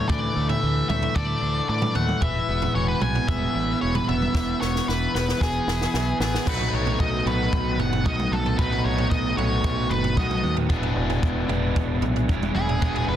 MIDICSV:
0, 0, Header, 1, 7, 480
1, 0, Start_track
1, 0, Tempo, 530035
1, 87, Time_signature, 4, 2, 24, 8
1, 11920, End_track
2, 0, Start_track
2, 0, Title_t, "Tonewheel organ"
2, 0, Program_c, 0, 16
2, 5852, Note_on_c, 0, 81, 61
2, 5854, Note_on_c, 0, 71, 66
2, 5856, Note_on_c, 0, 78, 59
2, 5859, Note_on_c, 0, 87, 77
2, 9654, Note_off_c, 0, 81, 0
2, 9656, Note_off_c, 0, 78, 0
2, 9657, Note_off_c, 0, 87, 0
2, 9691, Note_on_c, 0, 76, 65
2, 9692, Note_on_c, 0, 80, 62
2, 9694, Note_on_c, 0, 86, 74
2, 11920, Note_off_c, 0, 71, 0
2, 11920, Note_off_c, 0, 76, 0
2, 11920, Note_off_c, 0, 80, 0
2, 11920, Note_off_c, 0, 86, 0
2, 11920, End_track
3, 0, Start_track
3, 0, Title_t, "Lead electric guitar"
3, 0, Program_c, 1, 29
3, 79, Note_on_c, 1, 74, 84
3, 419, Note_off_c, 1, 74, 0
3, 447, Note_on_c, 1, 76, 89
3, 797, Note_off_c, 1, 76, 0
3, 808, Note_on_c, 1, 76, 79
3, 1040, Note_on_c, 1, 74, 85
3, 1056, Note_off_c, 1, 76, 0
3, 1523, Note_off_c, 1, 74, 0
3, 1534, Note_on_c, 1, 74, 74
3, 1756, Note_off_c, 1, 74, 0
3, 1770, Note_on_c, 1, 78, 80
3, 2011, Note_off_c, 1, 78, 0
3, 2015, Note_on_c, 1, 76, 82
3, 2461, Note_off_c, 1, 76, 0
3, 2494, Note_on_c, 1, 73, 76
3, 2609, Note_off_c, 1, 73, 0
3, 2612, Note_on_c, 1, 71, 88
3, 2725, Note_off_c, 1, 71, 0
3, 2732, Note_on_c, 1, 80, 88
3, 2956, Note_off_c, 1, 80, 0
3, 2971, Note_on_c, 1, 76, 90
3, 3419, Note_off_c, 1, 76, 0
3, 3454, Note_on_c, 1, 73, 83
3, 3577, Note_off_c, 1, 73, 0
3, 3577, Note_on_c, 1, 71, 78
3, 3696, Note_off_c, 1, 71, 0
3, 3702, Note_on_c, 1, 76, 82
3, 4171, Note_off_c, 1, 76, 0
3, 4175, Note_on_c, 1, 73, 76
3, 4399, Note_off_c, 1, 73, 0
3, 4423, Note_on_c, 1, 71, 74
3, 4655, Note_off_c, 1, 71, 0
3, 4666, Note_on_c, 1, 71, 70
3, 4885, Note_off_c, 1, 71, 0
3, 4912, Note_on_c, 1, 68, 69
3, 5588, Note_off_c, 1, 68, 0
3, 5633, Note_on_c, 1, 68, 72
3, 5864, Note_off_c, 1, 68, 0
3, 5868, Note_on_c, 1, 71, 79
3, 6107, Note_on_c, 1, 73, 85
3, 6109, Note_off_c, 1, 71, 0
3, 6337, Note_off_c, 1, 73, 0
3, 6341, Note_on_c, 1, 75, 79
3, 6562, Note_off_c, 1, 75, 0
3, 6586, Note_on_c, 1, 71, 88
3, 7062, Note_on_c, 1, 78, 89
3, 7075, Note_off_c, 1, 71, 0
3, 7282, Note_off_c, 1, 78, 0
3, 7303, Note_on_c, 1, 75, 88
3, 7542, Note_on_c, 1, 69, 77
3, 7546, Note_off_c, 1, 75, 0
3, 7762, Note_off_c, 1, 69, 0
3, 7777, Note_on_c, 1, 71, 89
3, 8008, Note_on_c, 1, 73, 83
3, 8023, Note_off_c, 1, 71, 0
3, 8234, Note_off_c, 1, 73, 0
3, 8244, Note_on_c, 1, 75, 83
3, 8485, Note_off_c, 1, 75, 0
3, 8488, Note_on_c, 1, 73, 83
3, 8969, Note_on_c, 1, 71, 79
3, 8985, Note_off_c, 1, 73, 0
3, 9194, Note_off_c, 1, 71, 0
3, 9211, Note_on_c, 1, 75, 78
3, 9546, Note_off_c, 1, 75, 0
3, 11369, Note_on_c, 1, 68, 84
3, 11814, Note_off_c, 1, 68, 0
3, 11850, Note_on_c, 1, 71, 93
3, 11920, Note_off_c, 1, 71, 0
3, 11920, End_track
4, 0, Start_track
4, 0, Title_t, "Overdriven electric guitar"
4, 0, Program_c, 2, 29
4, 0, Note_on_c, 2, 57, 55
4, 0, Note_on_c, 2, 62, 57
4, 0, Note_on_c, 2, 69, 63
4, 88, Note_on_c, 2, 52, 72
4, 312, Note_off_c, 2, 57, 0
4, 322, Note_on_c, 2, 57, 58
4, 327, Note_off_c, 2, 69, 0
4, 561, Note_off_c, 2, 52, 0
4, 564, Note_on_c, 2, 52, 60
4, 566, Note_off_c, 2, 62, 0
4, 801, Note_off_c, 2, 57, 0
4, 812, Note_on_c, 2, 57, 58
4, 1046, Note_on_c, 2, 69, 64
4, 1283, Note_on_c, 2, 62, 55
4, 1518, Note_off_c, 2, 52, 0
4, 1521, Note_on_c, 2, 52, 57
4, 1756, Note_off_c, 2, 57, 0
4, 1767, Note_on_c, 2, 57, 63
4, 2005, Note_off_c, 2, 52, 0
4, 2008, Note_off_c, 2, 62, 0
4, 2008, Note_on_c, 2, 52, 67
4, 2010, Note_off_c, 2, 57, 0
4, 2010, Note_off_c, 2, 69, 0
4, 2250, Note_on_c, 2, 59, 62
4, 2475, Note_off_c, 2, 52, 0
4, 2486, Note_on_c, 2, 52, 66
4, 2728, Note_off_c, 2, 59, 0
4, 2732, Note_on_c, 2, 59, 60
4, 2971, Note_on_c, 2, 68, 69
4, 3210, Note_on_c, 2, 64, 54
4, 3438, Note_off_c, 2, 52, 0
4, 3449, Note_on_c, 2, 52, 55
4, 3691, Note_off_c, 2, 59, 0
4, 3695, Note_on_c, 2, 59, 58
4, 3920, Note_off_c, 2, 52, 0
4, 3931, Note_on_c, 2, 52, 69
4, 4160, Note_off_c, 2, 59, 0
4, 4171, Note_on_c, 2, 59, 60
4, 4174, Note_off_c, 2, 68, 0
4, 4406, Note_off_c, 2, 52, 0
4, 4414, Note_off_c, 2, 64, 0
4, 4417, Note_on_c, 2, 52, 64
4, 4644, Note_off_c, 2, 59, 0
4, 4655, Note_on_c, 2, 59, 54
4, 4893, Note_on_c, 2, 68, 65
4, 5139, Note_on_c, 2, 64, 56
4, 5371, Note_off_c, 2, 52, 0
4, 5382, Note_on_c, 2, 52, 55
4, 5611, Note_off_c, 2, 59, 0
4, 5622, Note_on_c, 2, 59, 58
4, 5849, Note_off_c, 2, 52, 0
4, 5853, Note_on_c, 2, 54, 85
4, 5855, Note_off_c, 2, 68, 0
4, 5858, Note_off_c, 2, 64, 0
4, 5859, Note_off_c, 2, 59, 0
4, 5871, Note_on_c, 2, 57, 94
4, 5881, Note_on_c, 2, 63, 92
4, 7759, Note_off_c, 2, 54, 0
4, 7768, Note_off_c, 2, 57, 0
4, 7772, Note_on_c, 2, 54, 82
4, 7773, Note_off_c, 2, 63, 0
4, 7785, Note_on_c, 2, 57, 97
4, 7799, Note_on_c, 2, 63, 102
4, 9677, Note_off_c, 2, 54, 0
4, 9677, Note_off_c, 2, 57, 0
4, 9681, Note_on_c, 2, 59, 86
4, 9690, Note_off_c, 2, 63, 0
4, 9695, Note_on_c, 2, 62, 96
4, 9707, Note_on_c, 2, 68, 89
4, 11601, Note_off_c, 2, 68, 0
4, 11602, Note_off_c, 2, 59, 0
4, 11606, Note_on_c, 2, 59, 98
4, 11616, Note_off_c, 2, 62, 0
4, 11620, Note_on_c, 2, 62, 90
4, 11629, Note_on_c, 2, 68, 102
4, 11920, Note_off_c, 2, 59, 0
4, 11920, Note_off_c, 2, 62, 0
4, 11920, Note_off_c, 2, 68, 0
4, 11920, End_track
5, 0, Start_track
5, 0, Title_t, "Overdriven electric guitar"
5, 0, Program_c, 3, 29
5, 0, Note_on_c, 3, 50, 59
5, 0, Note_on_c, 3, 57, 61
5, 0, Note_on_c, 3, 62, 65
5, 0, Note_on_c, 3, 64, 65
5, 1768, Note_off_c, 3, 50, 0
5, 1774, Note_off_c, 3, 57, 0
5, 1778, Note_off_c, 3, 62, 0
5, 1782, Note_off_c, 3, 64, 0
5, 2004, Note_on_c, 3, 40, 59
5, 2010, Note_on_c, 3, 47, 63
5, 2016, Note_on_c, 3, 52, 59
5, 2021, Note_on_c, 3, 56, 70
5, 2026, Note_on_c, 3, 59, 72
5, 2029, Note_on_c, 3, 64, 76
5, 5836, Note_off_c, 3, 47, 0
5, 5847, Note_on_c, 3, 47, 75
5, 5852, Note_off_c, 3, 52, 0
5, 5853, Note_off_c, 3, 40, 0
5, 5855, Note_on_c, 3, 51, 83
5, 5857, Note_off_c, 3, 56, 0
5, 5860, Note_off_c, 3, 59, 0
5, 5861, Note_on_c, 3, 57, 79
5, 5865, Note_off_c, 3, 64, 0
5, 5871, Note_on_c, 3, 59, 91
5, 5875, Note_on_c, 3, 66, 91
5, 6561, Note_off_c, 3, 51, 0
5, 6561, Note_off_c, 3, 66, 0
5, 6565, Note_on_c, 3, 66, 80
5, 6568, Note_off_c, 3, 59, 0
5, 6572, Note_on_c, 3, 59, 79
5, 6577, Note_off_c, 3, 57, 0
5, 6581, Note_on_c, 3, 57, 68
5, 6588, Note_on_c, 3, 51, 65
5, 6589, Note_off_c, 3, 47, 0
5, 6593, Note_on_c, 3, 47, 64
5, 7275, Note_off_c, 3, 47, 0
5, 7276, Note_off_c, 3, 66, 0
5, 7282, Note_off_c, 3, 51, 0
5, 7284, Note_off_c, 3, 57, 0
5, 7286, Note_on_c, 3, 47, 67
5, 7293, Note_on_c, 3, 51, 72
5, 7303, Note_on_c, 3, 57, 69
5, 7305, Note_off_c, 3, 59, 0
5, 7308, Note_on_c, 3, 59, 78
5, 7314, Note_on_c, 3, 66, 74
5, 7752, Note_off_c, 3, 47, 0
5, 7758, Note_off_c, 3, 51, 0
5, 7763, Note_on_c, 3, 47, 75
5, 7765, Note_off_c, 3, 57, 0
5, 7769, Note_on_c, 3, 51, 87
5, 7770, Note_off_c, 3, 66, 0
5, 7779, Note_on_c, 3, 57, 92
5, 7782, Note_off_c, 3, 59, 0
5, 7785, Note_on_c, 3, 59, 89
5, 7792, Note_on_c, 3, 66, 94
5, 8472, Note_off_c, 3, 66, 0
5, 8474, Note_off_c, 3, 47, 0
5, 8477, Note_off_c, 3, 51, 0
5, 8482, Note_off_c, 3, 57, 0
5, 8483, Note_on_c, 3, 66, 82
5, 8490, Note_off_c, 3, 59, 0
5, 8494, Note_on_c, 3, 59, 67
5, 8500, Note_on_c, 3, 57, 78
5, 8508, Note_on_c, 3, 51, 62
5, 8512, Note_on_c, 3, 47, 62
5, 9190, Note_off_c, 3, 47, 0
5, 9193, Note_off_c, 3, 66, 0
5, 9200, Note_off_c, 3, 51, 0
5, 9201, Note_on_c, 3, 47, 67
5, 9202, Note_off_c, 3, 57, 0
5, 9211, Note_on_c, 3, 51, 69
5, 9216, Note_on_c, 3, 57, 65
5, 9222, Note_off_c, 3, 59, 0
5, 9225, Note_on_c, 3, 59, 77
5, 9230, Note_on_c, 3, 66, 82
5, 9672, Note_off_c, 3, 47, 0
5, 9677, Note_off_c, 3, 51, 0
5, 9679, Note_off_c, 3, 57, 0
5, 9679, Note_on_c, 3, 40, 92
5, 9687, Note_off_c, 3, 66, 0
5, 9690, Note_on_c, 3, 47, 94
5, 9697, Note_on_c, 3, 52, 90
5, 9700, Note_off_c, 3, 59, 0
5, 9700, Note_on_c, 3, 56, 96
5, 9704, Note_on_c, 3, 62, 96
5, 9711, Note_on_c, 3, 64, 110
5, 10393, Note_off_c, 3, 64, 0
5, 10396, Note_off_c, 3, 47, 0
5, 10397, Note_on_c, 3, 64, 80
5, 10403, Note_off_c, 3, 62, 0
5, 10407, Note_on_c, 3, 62, 81
5, 10408, Note_off_c, 3, 56, 0
5, 10412, Note_on_c, 3, 56, 71
5, 10415, Note_off_c, 3, 52, 0
5, 10418, Note_on_c, 3, 52, 81
5, 10423, Note_on_c, 3, 47, 68
5, 10425, Note_off_c, 3, 40, 0
5, 10428, Note_on_c, 3, 40, 71
5, 11108, Note_off_c, 3, 64, 0
5, 11112, Note_off_c, 3, 40, 0
5, 11116, Note_off_c, 3, 56, 0
5, 11119, Note_off_c, 3, 52, 0
5, 11121, Note_off_c, 3, 47, 0
5, 11122, Note_on_c, 3, 40, 71
5, 11131, Note_on_c, 3, 47, 79
5, 11134, Note_on_c, 3, 52, 71
5, 11142, Note_on_c, 3, 56, 73
5, 11144, Note_off_c, 3, 62, 0
5, 11148, Note_on_c, 3, 62, 83
5, 11152, Note_on_c, 3, 64, 81
5, 11583, Note_off_c, 3, 40, 0
5, 11590, Note_off_c, 3, 47, 0
5, 11594, Note_on_c, 3, 40, 89
5, 11596, Note_off_c, 3, 52, 0
5, 11600, Note_off_c, 3, 56, 0
5, 11601, Note_on_c, 3, 47, 86
5, 11605, Note_off_c, 3, 64, 0
5, 11610, Note_on_c, 3, 52, 99
5, 11615, Note_on_c, 3, 56, 107
5, 11619, Note_off_c, 3, 62, 0
5, 11623, Note_on_c, 3, 62, 90
5, 11625, Note_on_c, 3, 64, 91
5, 11920, Note_off_c, 3, 40, 0
5, 11920, Note_off_c, 3, 47, 0
5, 11920, Note_off_c, 3, 52, 0
5, 11920, Note_off_c, 3, 56, 0
5, 11920, Note_off_c, 3, 62, 0
5, 11920, Note_off_c, 3, 64, 0
5, 11920, End_track
6, 0, Start_track
6, 0, Title_t, "Fingered electric bass"
6, 0, Program_c, 4, 33
6, 87, Note_on_c, 4, 38, 65
6, 248, Note_off_c, 4, 38, 0
6, 329, Note_on_c, 4, 38, 76
6, 490, Note_off_c, 4, 38, 0
6, 571, Note_on_c, 4, 38, 75
6, 732, Note_off_c, 4, 38, 0
6, 809, Note_on_c, 4, 38, 76
6, 971, Note_off_c, 4, 38, 0
6, 1047, Note_on_c, 4, 38, 77
6, 1209, Note_off_c, 4, 38, 0
6, 1287, Note_on_c, 4, 38, 80
6, 1449, Note_off_c, 4, 38, 0
6, 1530, Note_on_c, 4, 45, 78
6, 1692, Note_off_c, 4, 45, 0
6, 1769, Note_on_c, 4, 39, 77
6, 1931, Note_off_c, 4, 39, 0
6, 2009, Note_on_c, 4, 28, 76
6, 2171, Note_off_c, 4, 28, 0
6, 2251, Note_on_c, 4, 28, 78
6, 2413, Note_off_c, 4, 28, 0
6, 2491, Note_on_c, 4, 28, 75
6, 2653, Note_off_c, 4, 28, 0
6, 2729, Note_on_c, 4, 35, 74
6, 2892, Note_off_c, 4, 35, 0
6, 2971, Note_on_c, 4, 28, 83
6, 3133, Note_off_c, 4, 28, 0
6, 3216, Note_on_c, 4, 33, 80
6, 3377, Note_off_c, 4, 33, 0
6, 3465, Note_on_c, 4, 28, 70
6, 3622, Note_off_c, 4, 28, 0
6, 3700, Note_on_c, 4, 28, 78
6, 3860, Note_off_c, 4, 28, 0
6, 3936, Note_on_c, 4, 28, 77
6, 4097, Note_off_c, 4, 28, 0
6, 4181, Note_on_c, 4, 28, 79
6, 4340, Note_off_c, 4, 28, 0
6, 4423, Note_on_c, 4, 28, 80
6, 4582, Note_off_c, 4, 28, 0
6, 4660, Note_on_c, 4, 28, 76
6, 4819, Note_off_c, 4, 28, 0
6, 4901, Note_on_c, 4, 28, 75
6, 5061, Note_off_c, 4, 28, 0
6, 5137, Note_on_c, 4, 28, 72
6, 5298, Note_off_c, 4, 28, 0
6, 5377, Note_on_c, 4, 35, 75
6, 5538, Note_off_c, 4, 35, 0
6, 5611, Note_on_c, 4, 33, 76
6, 5774, Note_off_c, 4, 33, 0
6, 5859, Note_on_c, 4, 35, 74
6, 6077, Note_off_c, 4, 35, 0
6, 6094, Note_on_c, 4, 35, 74
6, 6314, Note_off_c, 4, 35, 0
6, 6339, Note_on_c, 4, 35, 77
6, 6556, Note_off_c, 4, 35, 0
6, 6571, Note_on_c, 4, 35, 79
6, 6792, Note_off_c, 4, 35, 0
6, 6820, Note_on_c, 4, 35, 87
6, 7037, Note_off_c, 4, 35, 0
6, 7044, Note_on_c, 4, 30, 82
6, 7268, Note_off_c, 4, 30, 0
6, 7296, Note_on_c, 4, 35, 77
6, 7514, Note_off_c, 4, 35, 0
6, 7529, Note_on_c, 4, 35, 74
6, 7750, Note_off_c, 4, 35, 0
6, 7780, Note_on_c, 4, 35, 80
6, 7996, Note_off_c, 4, 35, 0
6, 8011, Note_on_c, 4, 35, 81
6, 8231, Note_off_c, 4, 35, 0
6, 8254, Note_on_c, 4, 35, 81
6, 8473, Note_off_c, 4, 35, 0
6, 8485, Note_on_c, 4, 35, 83
6, 8708, Note_off_c, 4, 35, 0
6, 8732, Note_on_c, 4, 35, 94
6, 8951, Note_off_c, 4, 35, 0
6, 8970, Note_on_c, 4, 30, 86
6, 9190, Note_off_c, 4, 30, 0
6, 9209, Note_on_c, 4, 35, 78
6, 9429, Note_off_c, 4, 35, 0
6, 9453, Note_on_c, 4, 39, 82
6, 9671, Note_off_c, 4, 39, 0
6, 9687, Note_on_c, 4, 28, 78
6, 9908, Note_off_c, 4, 28, 0
6, 9922, Note_on_c, 4, 28, 86
6, 10145, Note_off_c, 4, 28, 0
6, 10169, Note_on_c, 4, 28, 86
6, 10388, Note_off_c, 4, 28, 0
6, 10398, Note_on_c, 4, 28, 76
6, 10622, Note_off_c, 4, 28, 0
6, 10652, Note_on_c, 4, 28, 87
6, 10869, Note_off_c, 4, 28, 0
6, 10882, Note_on_c, 4, 35, 84
6, 11104, Note_off_c, 4, 35, 0
6, 11131, Note_on_c, 4, 28, 81
6, 11348, Note_off_c, 4, 28, 0
6, 11362, Note_on_c, 4, 28, 91
6, 11583, Note_off_c, 4, 28, 0
6, 11611, Note_on_c, 4, 28, 81
6, 11828, Note_off_c, 4, 28, 0
6, 11842, Note_on_c, 4, 28, 88
6, 11920, Note_off_c, 4, 28, 0
6, 11920, End_track
7, 0, Start_track
7, 0, Title_t, "Drums"
7, 84, Note_on_c, 9, 43, 77
7, 87, Note_on_c, 9, 36, 103
7, 175, Note_off_c, 9, 43, 0
7, 178, Note_off_c, 9, 36, 0
7, 447, Note_on_c, 9, 43, 79
7, 538, Note_off_c, 9, 43, 0
7, 812, Note_on_c, 9, 43, 78
7, 812, Note_on_c, 9, 47, 75
7, 902, Note_off_c, 9, 43, 0
7, 902, Note_off_c, 9, 47, 0
7, 928, Note_on_c, 9, 43, 75
7, 1019, Note_off_c, 9, 43, 0
7, 1048, Note_on_c, 9, 36, 97
7, 1048, Note_on_c, 9, 43, 84
7, 1048, Note_on_c, 9, 47, 71
7, 1139, Note_off_c, 9, 36, 0
7, 1139, Note_off_c, 9, 43, 0
7, 1139, Note_off_c, 9, 47, 0
7, 1648, Note_on_c, 9, 43, 81
7, 1648, Note_on_c, 9, 47, 82
7, 1738, Note_off_c, 9, 43, 0
7, 1738, Note_off_c, 9, 47, 0
7, 1768, Note_on_c, 9, 43, 78
7, 1858, Note_off_c, 9, 43, 0
7, 1890, Note_on_c, 9, 47, 66
7, 1980, Note_off_c, 9, 47, 0
7, 2007, Note_on_c, 9, 43, 77
7, 2010, Note_on_c, 9, 36, 94
7, 2098, Note_off_c, 9, 43, 0
7, 2101, Note_off_c, 9, 36, 0
7, 2373, Note_on_c, 9, 43, 76
7, 2464, Note_off_c, 9, 43, 0
7, 2730, Note_on_c, 9, 43, 82
7, 2730, Note_on_c, 9, 47, 75
7, 2821, Note_off_c, 9, 43, 0
7, 2821, Note_off_c, 9, 47, 0
7, 2855, Note_on_c, 9, 43, 74
7, 2946, Note_off_c, 9, 43, 0
7, 2975, Note_on_c, 9, 36, 108
7, 2976, Note_on_c, 9, 43, 72
7, 2976, Note_on_c, 9, 47, 67
7, 3066, Note_off_c, 9, 36, 0
7, 3067, Note_off_c, 9, 43, 0
7, 3067, Note_off_c, 9, 47, 0
7, 3577, Note_on_c, 9, 43, 85
7, 3577, Note_on_c, 9, 47, 80
7, 3667, Note_off_c, 9, 43, 0
7, 3667, Note_off_c, 9, 47, 0
7, 3701, Note_on_c, 9, 43, 74
7, 3791, Note_off_c, 9, 43, 0
7, 3821, Note_on_c, 9, 47, 67
7, 3912, Note_off_c, 9, 47, 0
7, 3937, Note_on_c, 9, 36, 101
7, 3941, Note_on_c, 9, 38, 52
7, 4027, Note_off_c, 9, 36, 0
7, 4031, Note_off_c, 9, 38, 0
7, 4181, Note_on_c, 9, 38, 54
7, 4271, Note_off_c, 9, 38, 0
7, 4307, Note_on_c, 9, 38, 52
7, 4398, Note_off_c, 9, 38, 0
7, 4427, Note_on_c, 9, 38, 58
7, 4518, Note_off_c, 9, 38, 0
7, 4667, Note_on_c, 9, 38, 64
7, 4758, Note_off_c, 9, 38, 0
7, 4787, Note_on_c, 9, 38, 57
7, 4878, Note_off_c, 9, 38, 0
7, 4901, Note_on_c, 9, 36, 92
7, 4906, Note_on_c, 9, 38, 67
7, 4991, Note_off_c, 9, 36, 0
7, 4997, Note_off_c, 9, 38, 0
7, 5143, Note_on_c, 9, 38, 71
7, 5234, Note_off_c, 9, 38, 0
7, 5265, Note_on_c, 9, 38, 65
7, 5356, Note_off_c, 9, 38, 0
7, 5380, Note_on_c, 9, 38, 69
7, 5471, Note_off_c, 9, 38, 0
7, 5619, Note_on_c, 9, 38, 86
7, 5710, Note_off_c, 9, 38, 0
7, 5746, Note_on_c, 9, 38, 71
7, 5836, Note_off_c, 9, 38, 0
7, 5860, Note_on_c, 9, 36, 111
7, 5863, Note_on_c, 9, 43, 74
7, 5863, Note_on_c, 9, 49, 100
7, 5950, Note_off_c, 9, 36, 0
7, 5953, Note_off_c, 9, 43, 0
7, 5953, Note_off_c, 9, 49, 0
7, 5984, Note_on_c, 9, 43, 78
7, 6074, Note_off_c, 9, 43, 0
7, 6220, Note_on_c, 9, 43, 80
7, 6311, Note_off_c, 9, 43, 0
7, 6339, Note_on_c, 9, 36, 95
7, 6430, Note_off_c, 9, 36, 0
7, 6582, Note_on_c, 9, 43, 75
7, 6673, Note_off_c, 9, 43, 0
7, 6818, Note_on_c, 9, 36, 107
7, 6818, Note_on_c, 9, 43, 77
7, 6908, Note_off_c, 9, 36, 0
7, 6909, Note_off_c, 9, 43, 0
7, 7059, Note_on_c, 9, 43, 77
7, 7149, Note_off_c, 9, 43, 0
7, 7179, Note_on_c, 9, 43, 81
7, 7270, Note_off_c, 9, 43, 0
7, 7297, Note_on_c, 9, 47, 70
7, 7298, Note_on_c, 9, 36, 94
7, 7387, Note_off_c, 9, 47, 0
7, 7389, Note_off_c, 9, 36, 0
7, 7421, Note_on_c, 9, 47, 82
7, 7512, Note_off_c, 9, 47, 0
7, 7544, Note_on_c, 9, 47, 73
7, 7635, Note_off_c, 9, 47, 0
7, 7660, Note_on_c, 9, 43, 71
7, 7751, Note_off_c, 9, 43, 0
7, 7777, Note_on_c, 9, 36, 110
7, 7780, Note_on_c, 9, 43, 76
7, 7868, Note_off_c, 9, 36, 0
7, 7871, Note_off_c, 9, 43, 0
7, 7901, Note_on_c, 9, 43, 77
7, 7992, Note_off_c, 9, 43, 0
7, 8135, Note_on_c, 9, 43, 82
7, 8225, Note_off_c, 9, 43, 0
7, 8255, Note_on_c, 9, 36, 104
7, 8345, Note_off_c, 9, 36, 0
7, 8498, Note_on_c, 9, 43, 91
7, 8589, Note_off_c, 9, 43, 0
7, 8733, Note_on_c, 9, 36, 112
7, 8736, Note_on_c, 9, 43, 84
7, 8823, Note_off_c, 9, 36, 0
7, 8827, Note_off_c, 9, 43, 0
7, 8974, Note_on_c, 9, 43, 86
7, 9064, Note_off_c, 9, 43, 0
7, 9093, Note_on_c, 9, 43, 85
7, 9184, Note_off_c, 9, 43, 0
7, 9211, Note_on_c, 9, 36, 96
7, 9211, Note_on_c, 9, 47, 73
7, 9302, Note_off_c, 9, 36, 0
7, 9302, Note_off_c, 9, 47, 0
7, 9335, Note_on_c, 9, 47, 84
7, 9426, Note_off_c, 9, 47, 0
7, 9450, Note_on_c, 9, 47, 72
7, 9541, Note_off_c, 9, 47, 0
7, 9569, Note_on_c, 9, 43, 77
7, 9659, Note_off_c, 9, 43, 0
7, 9687, Note_on_c, 9, 43, 80
7, 9689, Note_on_c, 9, 36, 102
7, 9777, Note_off_c, 9, 43, 0
7, 9779, Note_off_c, 9, 36, 0
7, 9808, Note_on_c, 9, 43, 78
7, 9899, Note_off_c, 9, 43, 0
7, 10051, Note_on_c, 9, 43, 83
7, 10142, Note_off_c, 9, 43, 0
7, 10170, Note_on_c, 9, 36, 114
7, 10261, Note_off_c, 9, 36, 0
7, 10409, Note_on_c, 9, 43, 86
7, 10500, Note_off_c, 9, 43, 0
7, 10652, Note_on_c, 9, 36, 100
7, 10654, Note_on_c, 9, 43, 85
7, 10742, Note_off_c, 9, 36, 0
7, 10744, Note_off_c, 9, 43, 0
7, 10887, Note_on_c, 9, 43, 88
7, 10977, Note_off_c, 9, 43, 0
7, 11013, Note_on_c, 9, 43, 83
7, 11104, Note_off_c, 9, 43, 0
7, 11132, Note_on_c, 9, 36, 100
7, 11132, Note_on_c, 9, 47, 74
7, 11223, Note_off_c, 9, 36, 0
7, 11223, Note_off_c, 9, 47, 0
7, 11253, Note_on_c, 9, 47, 88
7, 11344, Note_off_c, 9, 47, 0
7, 11374, Note_on_c, 9, 47, 78
7, 11465, Note_off_c, 9, 47, 0
7, 11493, Note_on_c, 9, 43, 74
7, 11584, Note_off_c, 9, 43, 0
7, 11610, Note_on_c, 9, 43, 85
7, 11612, Note_on_c, 9, 36, 110
7, 11701, Note_off_c, 9, 43, 0
7, 11702, Note_off_c, 9, 36, 0
7, 11734, Note_on_c, 9, 43, 83
7, 11825, Note_off_c, 9, 43, 0
7, 11920, End_track
0, 0, End_of_file